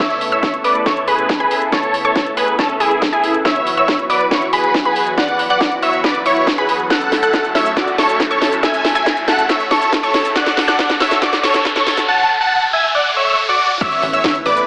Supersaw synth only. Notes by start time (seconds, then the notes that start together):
0.00 C#5 E5
0.32 C#5 E5
0.64 B4 D5
0.86 A4 C#5
1.08 G#4 B4
1.40 G#4 B4
1.72 A4 C#5
2.05 A4 C#5
2.37 G#4 B4
2.59 C#4 A4
2.80 E4 G#4
3.13 E4 G#4
3.45 C#5 E5
3.77 C#5 E5
4.10 B4 D5
4.31 E4 C#5
4.53 G#4 B4
4.85 G#4 B4
5.18 D5 F#5
5.50 D5 F#5
5.82 C#5 E5
6.04 B4 D5
6.26 E4 C#5
6.58 G#4 B4
6.90 A4 F#5
7.23 A4 F#5
7.55 C#5 E5
7.76 F#4 D5
7.98 A4 C#5
8.30 A4 C#5
8.63 E5 G#5
8.95 E5 G#5
9.28 A4 F#5
9.49 C#5 E5
9.71 A4 C#5
10.03 A4 C#5
10.36 D5 F#5
10.68 D5 F#5
11.00 C#5 E5
11.22 F#4 D5
11.44 A4 C#5
11.76 A4 C#5
12.08 F#5 A5
12.41 F#5 A5
12.73 E5 G#5
12.95 D5 F#5
13.16 C#5 E5
13.49 F#4 D5
13.81 C#5 E5
14.13 C#5 E5
14.46 B4 D5